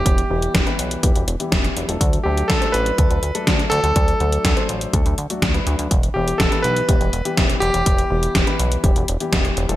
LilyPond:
<<
  \new Staff \with { instrumentName = "Electric grand piano" } { \time 4/4 \key e \minor \tempo 4 = 123 g'4. r2 r8 | r8 g'8 a'8 b'4. r8 a'8~ | a'4. r2 r8 | r8 g'8 a'8 b'4. r8 g'8~ |
g'4. r2 r8 | }
  \new Staff \with { instrumentName = "Grand piano" } { \time 4/4 \key e \minor <e g b g'>16 r16 <e g b g'>8. <e g b b'>8. <e g b g'>8 r16 <e g b g'>4 <fis a d' a'>16~ | <fis a d' a'>16 r16 <fis a d' a'>8. <fis a d' c''>8. <fis a d' a'>8 r16 <fis a d' a'>4 <fis a d' a'>16~ | <fis a d' a'>16 r16 <fis a d' a'>8. <fis a d' c''>8. <fis a d' a'>8 r16 <fis a d' fis'>8 <fis a d' b'>8. | r8 <e g b g'>8. <e g b b'>8. <e g b g'>8 r16 <e g b g'>4 <e g b g'>16~ |
<e g b g'>16 r16 <e g b g'>8. <e g b b'>8. <e g b g'>8 r16 <e g b g'>4 <fis a d' a'>16 | }
  \new Staff \with { instrumentName = "Analog synth bass" } { \clef bass \time 4/4 \key e \minor e,,16 r16 e,,16 r16 e,,16 r16 b,,16 r16 e,,16 e,,16 e,,16 r16 e,,16 r16 e,,16 e,,16 | d,16 r16 d,16 r16 d,16 r16 a,,16 r16 d,16 d,16 d,16 r16 d,16 r16 d,16 d,16 | d,16 r16 d,16 r16 d,16 r16 a,,16 r16 d,16 d,16 d,16 r16 d,16 r16 d,16 d,16 | e,,16 r16 e,,16 r16 e,,16 r16 b,,16 r16 e,,16 e,,16 e,,16 r16 e,,16 r16 e,,16 e,,16 |
e,,16 r16 e,,16 r16 e,,16 r16 b,,16 r16 e,,16 e,,16 e,,16 r16 e,,16 r16 e,,16 e,,16 | }
  \new DrumStaff \with { instrumentName = "Drums" } \drummode { \time 4/4 <hh bd>16 hh8 hh16 <hh bd sn>16 hh16 hh16 hh16 <hh bd>16 hh16 hh16 hh16 <hh bd sn>16 <hh sn>16 hh16 hh16 | <hh bd>16 hh8 hh16 <hh bd sn>16 hh16 hh16 hh16 <hh bd>16 hh16 hh16 hh16 <hh bd sn>16 hh16 hh16 hh16 | <hh bd>16 hh16 hh16 hh16 <hh bd sn>16 hh16 hh16 hh16 <hh bd>16 hh16 hh16 hh16 <hh bd sn>16 <hh sn>16 hh16 hh16 | <hh bd>16 hh8 hh16 <hh bd sn>16 hh16 hh16 hh16 <hh bd>16 hh16 hh16 hh16 <hh bd sn>16 hh16 hh16 hh16 |
<hh bd>16 hh8 hh16 <hh bd sn>16 hh16 hh16 hh16 <hh bd>16 hh16 hh16 hh16 <hh bd sn>16 <hh sn>16 hh16 hh16 | }
>>